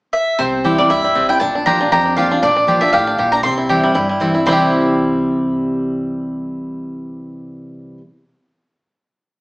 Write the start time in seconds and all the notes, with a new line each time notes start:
0.13 E5
0.39 C2 C3 C4 C5
0.64 E3 G3 C4 E4 G4
0.78 G3 C4 E4 D5
0.90 D2 G2 E4 E5
1.04 G3
1.15 C2 C3 C4
1.29 E4 G5
1.40 A#1 A#2 D4 A5
1.55 D4
1.66 F3 A#3 D4 F4 G4 A#5
1.80 D4 F4
1.92 F2 G4 A#5
2.06 D4
2.16 F3 A#3 D4 F4 G4 F5
2.31 D4 F4
2.42 A#1 A#2 D4 D5
2.56 D4
2.67 G1 F3 A#3 D4 F4 G4
2.81 D4 F4 E5
2.93 A1 A2 G4 F5
3.07 D4
3.18 A#1 A#2 G4
3.32 D4 A#5
3.43 C2 C3 C4 C6
3.58 E4
3.69 E3 G3 C4 E4 G4
3.83 G3
3.95 G1 G2 E4
4.09 G3
4.20 E3 G3 C4 E4
4.34 C4 E4
4.46 C2 C3 E3 G3 C4 E4 C6
4.51 E4 G4